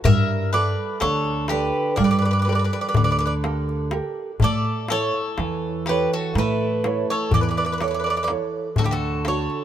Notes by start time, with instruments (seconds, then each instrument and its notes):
0.04 upright bass G2, nylon-string guitar G3, mandolin A#4, bouzouki E5, darbuka dum
0.28 darbuka tek
0.53 nylon-string guitar G4 A4, mandolin B4, bouzouki D5
1.00 upright bass D2, nylon-string guitar D3, mandolin A4, bouzouki C#5, darbuka tek
1.25 darbuka tek
1.48 mandolin G4, nylon-string guitar G4 A4 D5, bouzouki B4, darbuka tek
1.96 upright bass G2, nylon-string guitar G3, mandolin A#4, bouzouki D5, darbuka tek, darbuka dum
2.04 mandolin B4, bouzouki D5
2.11 mandolin B4, bouzouki D5
2.19 mandolin B4, bouzouki D5
2.25 bouzouki D5
2.31 mandolin B4, bouzouki D5
2.39 mandolin B4, bouzouki D5
2.45 nylon-string guitar G4 A4 A#4, mandolin B4
2.49 mandolin B4, bouzouki D5
2.55 bouzouki D5
2.59 mandolin B4
2.64 mandolin B4, bouzouki D5
2.71 mandolin B4, bouzouki D5, darbuka tek
2.81 mandolin B4, bouzouki D5
2.89 mandolin B4, bouzouki D5
2.94 upright bass D2, nylon-string guitar D3, mandolin B4, bouzouki D5, darbuka dum
3.04 mandolin B4, bouzouki D5
3.11 mandolin B4, bouzouki D5
3.19 mandolin B4, bouzouki D5
3.26 mandolin B4, bouzouki D5
3.44 nylon-string guitar G4 A4 A#4, darbuka tek
3.69 darbuka tek
3.91 nylon-string guitar G4 A4 A#4, darbuka tek
4.40 upright bass A2, nylon-string guitar A3, mandolin A4, darbuka dum
4.44 bouzouki D5
4.64 darbuka tek
4.88 nylon-string guitar E4 A4 C#5, mandolin A4, bouzouki C#5, darbuka tek
5.14 darbuka tek
5.38 upright bass E2, nylon-string guitar E3, darbuka tek
5.86 nylon-string guitar E4 A4 C#5, mandolin G4, bouzouki B4, darbuka tek
6.13 mandolin F#4, bouzouki A4
6.35 upright bass A2, nylon-string guitar A3, bouzouki B4, darbuka tek
6.39 mandolin E4
6.84 nylon-string guitar E4 A4 C#5, darbuka tek
7.10 mandolin A4, bouzouki C#5
7.31 upright bass E2, nylon-string guitar E3, mandolin A4, bouzouki D5, darbuka dum
7.41 mandolin B4, bouzouki D5
7.49 mandolin B4, bouzouki D5
7.55 mandolin B4, bouzouki D5, darbuka tek
7.65 mandolin B4, bouzouki D5
7.72 mandolin B4, bouzouki D5
7.78 nylon-string guitar E4 A4 C#5, mandolin B4, bouzouki D5, darbuka tek
7.84 mandolin B4, bouzouki D5
7.91 mandolin B4, bouzouki D5
7.99 mandolin B4
8.04 mandolin B4, bouzouki D5
8.10 bouzouki D5
8.16 mandolin B4, bouzouki D5
8.23 mandolin B4, bouzouki D5
8.28 nylon-string guitar E4 A4 C#5, darbuka tek
8.76 upright bass D2, nylon-string guitar D3, mandolin F#4, bouzouki A4, darbuka dum
8.84 mandolin E4, bouzouki G4
8.91 mandolin F#4, bouzouki A4
9.25 nylon-string guitar D4 F#4 A4, mandolin A4, bouzouki C#5, darbuka tek
9.50 darbuka tek